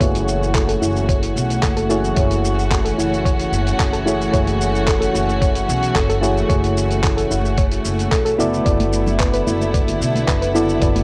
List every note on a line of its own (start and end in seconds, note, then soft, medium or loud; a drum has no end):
0.00 0.77 F#1 loud
0.00 8.35 E3 medium
0.00 1.86 A3 medium
0.00 11.03 A3 medium
0.00 8.35 C#4 medium
0.00 1.86 E4 medium
0.00 8.34 F#4 medium
0.00 1.87 F#4 medium
0.00 1.87 G#4 medium
0.00 0.08 C#5 loud
0.00 1.88 C#5 medium
0.00 kick loud
0.00 closed hi-hat medium
0.00 shaker soft
0.15 closed hi-hat soft
0.15 shaker soft
0.28 shaker medium
0.43 shaker soft
0.55 0.67 A4 medium
0.55 kick loud
0.55 clap loud
0.55 closed hi-hat medium
0.55 shaker soft
0.69 0.76 A4 medium
0.69 closed hi-hat soft
0.69 shaker soft
0.82 1.31 F#1 medium
0.82 0.94 E4 medium
0.82 shaker medium
0.96 shaker soft
1.09 1.17 C#5 loud
1.09 kick loud
1.09 closed hi-hat medium
1.09 shaker soft
1.23 closed hi-hat soft
1.23 shaker soft
1.36 1.57 B1 medium
1.36 shaker medium
1.50 closed hi-hat soft
1.50 shaker soft
1.63 2.12 F#1 medium
1.63 1.75 A4 medium
1.63 kick loud
1.63 clap loud
1.63 closed hi-hat medium
1.63 shaker soft
1.77 1.84 A4 medium
1.77 closed hi-hat soft
1.77 shaker soft
1.89 2.14 A3 medium
1.89 2.14 E4 medium
1.89 2.03 E4 medium
1.89 2.14 F#4 medium
1.89 2.14 G#4 medium
1.89 2.15 C#5 loud
1.89 shaker medium
2.04 shaker soft
2.15 2.94 F#1 loud
2.15 4.02 A3 medium
2.15 4.02 E4 medium
2.15 4.03 F#4 medium
2.15 4.04 G#4 medium
2.15 2.25 C#5 loud
2.15 kick loud
2.15 closed hi-hat medium
2.15 shaker soft
2.19 4.04 C#5 medium
2.31 closed hi-hat soft
2.31 shaker soft
2.45 shaker medium
2.59 shaker soft
2.71 2.84 A4 medium
2.71 kick loud
2.71 clap loud
2.71 closed hi-hat medium
2.71 shaker soft
2.85 2.92 A4 medium
2.85 closed hi-hat soft
2.85 shaker soft
2.98 3.48 F#1 medium
2.98 3.11 E4 medium
2.98 shaker medium
3.14 shaker soft
3.25 3.33 C#5 medium
3.25 kick loud
3.25 closed hi-hat medium
3.25 shaker soft
3.40 closed hi-hat soft
3.40 shaker soft
3.52 3.73 F#1 medium
3.52 shaker medium
3.67 closed hi-hat soft
3.67 shaker soft
3.79 4.29 F#1 medium
3.79 3.92 A4 medium
3.79 kick loud
3.79 clap loud
3.79 closed hi-hat medium
3.79 shaker soft
3.93 4.00 A4 loud
3.93 closed hi-hat soft
3.93 shaker soft
4.05 4.30 A3 medium
4.05 4.18 E4 medium
4.05 4.30 E4 medium
4.05 4.30 F#4 medium
4.05 4.31 G#4 medium
4.05 4.31 C#5 loud
4.05 shaker medium
4.21 shaker soft
4.32 5.10 F#1 loud
4.32 6.19 A3 medium
4.32 6.19 E4 medium
4.32 6.20 F#4 medium
4.32 6.20 G#4 medium
4.32 4.41 C#5 loud
4.32 kick loud
4.32 closed hi-hat medium
4.32 shaker soft
4.36 6.21 C#5 loud
4.47 closed hi-hat soft
4.47 shaker soft
4.61 shaker medium
4.75 shaker soft
4.87 4.99 A4 medium
4.87 kick loud
4.87 clap loud
4.87 closed hi-hat medium
4.87 shaker medium
5.01 5.08 A4 medium
5.01 closed hi-hat soft
5.01 shaker soft
5.14 5.64 F#1 medium
5.14 5.27 E4 medium
5.14 shaker medium
5.29 shaker soft
5.41 5.49 C#5 medium
5.41 kick loud
5.41 closed hi-hat medium
5.41 shaker soft
5.55 closed hi-hat soft
5.55 shaker soft
5.69 5.90 B1 loud
5.69 shaker medium
5.83 closed hi-hat soft
5.83 shaker soft
5.95 6.45 F#1 loud
5.95 6.08 A4 medium
5.95 kick loud
5.95 clap loud
5.95 closed hi-hat medium
5.95 shaker soft
6.09 6.17 A4 loud
6.09 closed hi-hat soft
6.09 shaker soft
6.21 6.46 A3 medium
6.21 6.46 E4 medium
6.21 6.35 E4 medium
6.21 6.46 F#4 medium
6.21 6.46 G#4 medium
6.21 6.47 C#5 loud
6.21 shaker medium
6.37 shaker soft
6.48 7.26 F#1 loud
6.48 8.35 A3 medium
6.48 8.35 E4 medium
6.48 8.36 F#4 medium
6.48 8.36 G#4 medium
6.48 6.57 C#5 loud
6.48 kick loud
6.48 closed hi-hat medium
6.48 shaker soft
6.52 8.37 C#5 medium
6.64 closed hi-hat soft
6.64 shaker soft
6.78 shaker medium
6.91 closed hi-hat soft
6.91 shaker soft
7.04 7.16 A4 medium
7.04 kick loud
7.04 clap loud
7.04 closed hi-hat medium
7.04 shaker soft
7.17 7.24 A4 medium
7.17 closed hi-hat soft
7.17 shaker soft
7.31 7.80 F#1 medium
7.31 7.43 E4 medium
7.31 shaker medium
7.45 shaker soft
7.58 7.65 C#5 medium
7.58 kick loud
7.58 closed hi-hat medium
7.58 shaker soft
7.72 closed hi-hat soft
7.72 shaker soft
7.85 8.06 F#1 medium
7.85 shaker medium
7.99 closed hi-hat soft
7.99 shaker soft
8.11 8.33 B1 medium
8.11 8.24 A4 medium
8.11 kick loud
8.11 clap medium
8.11 closed hi-hat medium
8.11 shaker soft
8.25 8.33 A4 loud
8.25 closed hi-hat soft
8.25 shaker soft
8.38 8.60 F#1 medium
8.38 11.03 D3 medium
8.38 8.62 B3 medium
8.38 11.03 B3 medium
8.38 8.63 E4 medium
8.38 8.51 E4 medium
8.38 11.03 E4 medium
8.38 8.63 F#4 medium
8.38 8.63 A4 medium
8.38 8.63 D5 loud
8.38 shaker medium
8.54 shaker soft
8.65 9.42 F#1 loud
8.65 10.51 B3 medium
8.65 10.52 E4 medium
8.65 10.52 F#4 medium
8.65 10.53 A4 medium
8.65 8.73 D5 loud
8.65 10.53 D5 medium
8.65 kick loud
8.65 closed hi-hat medium
8.65 shaker soft
8.80 closed hi-hat soft
8.80 high conga medium
8.80 shaker soft
8.93 shaker medium
9.06 low conga medium
9.06 shaker soft
9.20 9.32 B4 medium
9.20 kick loud
9.20 clap loud
9.20 closed hi-hat medium
9.20 shaker soft
9.34 9.41 B4 loud
9.34 closed hi-hat soft
9.34 shaker soft
9.47 9.96 F#1 medium
9.47 9.60 E4 medium
9.47 high conga medium
9.47 shaker medium
9.62 muted conga medium
9.62 shaker soft
9.74 9.81 D5 medium
9.74 kick loud
9.74 closed hi-hat medium
9.74 shaker soft
9.88 closed hi-hat soft
9.88 muted conga medium
9.88 shaker soft
10.01 10.22 B1 loud
10.01 shaker medium
10.16 closed hi-hat soft
10.16 high conga medium
10.16 shaker soft
10.28 10.77 F#1 medium
10.28 10.41 B4 medium
10.28 kick loud
10.28 clap loud
10.28 closed hi-hat medium
10.28 shaker soft
10.42 10.49 B4 loud
10.42 closed hi-hat soft
10.42 shaker soft
10.54 10.78 B3 medium
10.54 10.67 E4 medium
10.54 10.79 E4 medium
10.54 10.79 F#4 medium
10.54 10.79 A4 medium
10.54 10.79 D5 loud
10.54 muted conga soft
10.54 shaker medium
10.69 shaker soft
10.80 11.03 F#1 loud
10.80 11.03 B3 medium
10.80 11.03 E4 medium
10.80 11.03 F#4 medium
10.80 11.03 A4 medium
10.80 10.90 D5 loud
10.80 11.03 D5 loud
10.80 kick medium
10.80 closed hi-hat medium
10.80 shaker soft
10.96 closed hi-hat soft
10.96 high conga medium
10.96 shaker soft